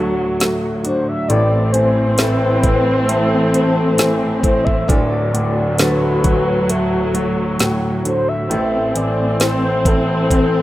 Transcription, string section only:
0.00 1.26 D2 medium
0.00 10.62 A2 medium
0.00 1.26 F#3 medium
1.29 4.85 E3 medium
1.29 4.85 C4 medium
4.88 8.46 D2 medium
4.88 8.46 F#3 medium
8.50 10.62 E3 medium
8.50 10.62 C4 medium

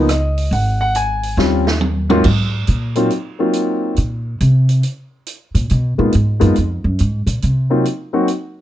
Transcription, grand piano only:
0.11 0.50 D#5 medium
0.53 0.79 F#5 medium
0.81 0.95 F#5 medium
0.96 1.36 G#5 medium
1.38 1.64 G3 medium
1.38 1.64 C4 medium
1.38 1.64 C#4 medium
1.38 1.64 F4 medium
2.10 2.23 G#2 medium
2.10 2.23 F#3 medium
2.10 2.23 A#3 medium
2.10 2.23 C4 medium
2.10 2.23 F4 medium
2.96 3.09 F#3 medium
2.96 3.09 A#3 medium
2.96 3.09 C4 medium
2.96 3.09 D#4 soft
2.96 3.10 F4 medium
3.39 3.94 F#3 medium
3.39 3.94 A#3 medium
3.39 3.94 C4 medium
3.39 3.94 D#4 soft
3.39 3.94 F4 medium
5.98 6.11 G#3 medium
5.98 6.11 A#3 medium
5.98 6.11 B3 medium
5.98 6.11 D#4 soft
5.98 6.12 F4 medium
6.40 6.54 G#3 medium
6.40 6.54 A#3 medium
6.40 6.54 B3 medium
6.40 6.54 D#4 medium
6.40 6.54 F4 medium
7.70 7.83 F#3 medium
7.70 7.83 A#3 medium
7.70 7.84 C4 medium
7.70 7.84 D#4 medium
7.70 7.84 F4 medium
8.13 8.26 F#3 medium
8.13 8.26 A#3 soft
8.13 8.26 C4 medium
8.13 8.27 D#4 medium
8.13 8.27 F#4 medium

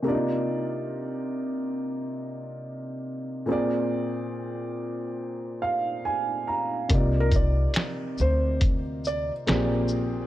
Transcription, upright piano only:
0.03 3.42 C3 medium
0.03 3.43 A#3 medium
0.03 0.14 D4 soft
0.07 3.45 F4 medium
0.07 3.45 D5 medium
0.12 3.47 D#4 medium
3.46 6.85 A#2 medium
3.46 6.86 A#3 medium
3.46 6.87 C4 medium
3.50 6.88 G#4 medium
3.50 6.88 D5 medium
5.62 6.02 F5 medium
6.05 6.45 G#5 medium
6.47 6.87 A#5 medium
6.89 9.43 C3 medium
6.89 9.44 A#3 medium
6.89 9.44 D#4 medium
6.93 9.45 F4 medium
6.93 9.46 D5 medium
9.47 10.27 A#2 medium
9.47 10.27 A#3 medium
9.47 10.27 C4 medium
9.47 10.27 G4 medium
9.47 10.27 G#4 medium
9.47 10.27 D5 medium

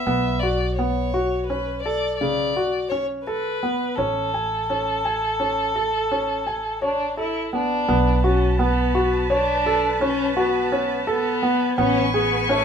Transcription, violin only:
0.00 0.41 E5 medium
0.40 0.75 D5 medium
0.75 1.44 C#5 medium
1.47 1.81 B4 medium
1.82 2.16 D5 medium
2.17 2.86 D5 medium
2.89 3.06 C#5 medium
3.25 3.97 B4 medium
3.96 6.81 A4 medium
6.83 7.16 D4 medium
7.19 7.51 E4 medium
7.54 8.21 D4 medium
8.26 8.58 C#4 medium
8.61 9.27 B3 medium
9.32 9.98 D4 medium
10.02 10.35 C#4 medium
10.37 11.04 B3 medium
11.09 11.75 B3 medium
11.79 12.12 C#4 medium
12.15 12.53 B3 medium
12.51 12.65 A3 medium

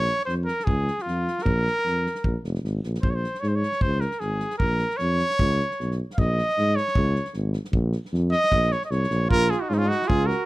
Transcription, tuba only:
0.00 0.10 A#1 medium
0.27 0.49 F2 medium
0.67 0.89 C#2 medium
1.06 1.28 F2 medium
1.44 1.66 A#1 loud
1.85 2.07 F2 medium
2.24 2.35 A#1 medium
2.44 2.62 F1 medium
2.63 2.81 G#1 medium
2.84 3.02 A#1 medium
3.03 3.25 A#1 medium
3.43 3.65 G#2 medium
3.83 4.05 C#2 medium
4.22 4.43 G#1 medium
4.62 4.83 A#1 medium
5.00 5.22 F2 medium
5.40 5.61 C#2 loud
5.79 6.00 B1 medium
6.19 6.40 A#1 loud
6.57 6.79 G#2 medium
6.97 7.18 C#2 loud
7.35 7.56 G#1 medium
7.73 7.95 A#1 loud
8.12 8.34 F2 loud
8.52 8.73 A#1 loud
8.90 9.09 C2 medium
9.10 9.28 A#1 medium
9.31 9.52 A#1 loud
9.70 9.91 G#2 medium
10.09 10.31 C#2 loud

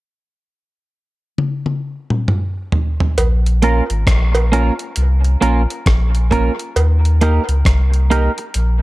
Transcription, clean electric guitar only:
3.62 3.82 A#3 medium
3.62 3.83 C#4 medium
3.62 3.83 F4 medium
3.62 3.83 A#4 medium
4.52 4.72 A#3 medium
4.52 4.72 C#4 medium
4.52 4.72 F4 medium
4.52 4.73 A#4 medium
5.41 5.61 A#3 medium
5.41 5.62 C#4 medium
5.41 5.62 F4 medium
5.41 5.62 A#4 medium
6.31 6.51 A#3 medium
6.31 6.51 C#4 medium
6.31 6.51 F4 medium
6.31 6.52 A#4 medium
7.21 7.41 A#3 medium
7.21 7.41 D#4 medium
7.21 7.42 G4 medium
7.21 7.42 A#4 medium
8.10 8.30 A#3 medium
8.10 8.30 D#4 medium
8.10 8.31 G4 medium
8.10 8.31 A#4 loud
8.38 muted clean electric guitar stroke soft

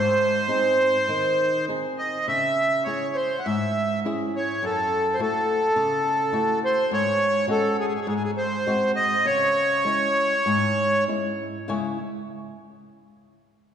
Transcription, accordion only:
0.00 1.65 C5 loud
1.99 2.26 D#5 medium
2.28 2.84 E5 loud
2.84 3.17 C#5 medium
3.15 3.40 C5 medium
3.39 3.46 F#5 medium
3.44 4.00 E5 medium
4.36 4.65 C#5 medium
4.65 5.16 A4 medium
5.14 5.20 C5 medium
5.21 6.59 A4 medium
6.65 6.90 C5 loud
6.93 7.46 C#5 loud
7.51 7.77 A4 loud
7.80 7.86 G#4 medium
7.87 7.93 G#4 medium
7.95 8.00 G#4 medium
8.01 8.06 G#4 medium
8.08 8.14 G#4 medium
8.15 8.23 G#4 medium
8.24 8.31 G#4 medium
8.37 8.92 C5 loud
8.96 9.26 D#5 loud
9.26 11.04 C#5 loud

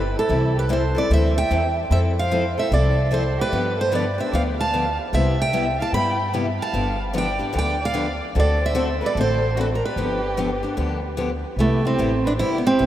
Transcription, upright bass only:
0.00 0.14 G1 medium
0.29 0.94 C2 medium
1.10 1.44 D2 medium
1.51 1.85 E2 medium
1.90 2.55 F2 medium
2.71 3.35 C2 medium
3.52 4.16 G2 medium
4.33 4.97 D2 medium
5.13 5.77 C2 medium
5.92 6.57 G2 medium
6.73 7.38 G1 medium
7.55 8.19 D2 medium
8.36 9.00 D2 loud
9.15 9.80 A1 medium
9.96 10.61 G1 medium
10.77 11.42 D2 medium
11.56 11.96 C2 medium
11.99 12.38 A1 medium
12.40 12.79 G1 medium
12.80 12.86 B1 medium

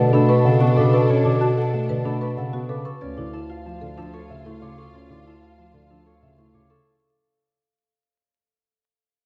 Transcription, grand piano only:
0.00 0.17 D3 medium
0.13 0.33 A3 medium
0.45 0.65 C#3 medium
0.61 0.82 B3 medium
0.78 0.98 C#3 medium
1.10 1.30 C#4 medium
1.25 1.46 D3 medium
1.74 1.94 A3 medium
1.89 2.10 D3 soft
2.05 2.26 A3 medium
2.37 2.58 C#3 medium
2.53 2.74 B3 medium
2.69 2.90 C#3 medium
3.01 3.22 C#4 medium
3.18 3.38 D3 medium
3.66 3.86 F3 medium
3.82 4.02 D3 medium
3.98 4.18 F3 medium
4.30 4.50 C#3 medium
4.46 4.66 A3 medium
4.61 4.82 C#3 medium
4.94 5.14 C#4 medium
5.10 5.31 D3 medium
5.58 5.79 F3 medium
5.73 5.95 D3 soft
5.90 6.11 F3 medium
6.22 6.43 C#3 soft
6.38 6.59 A3 medium
6.54 6.75 C#3 soft

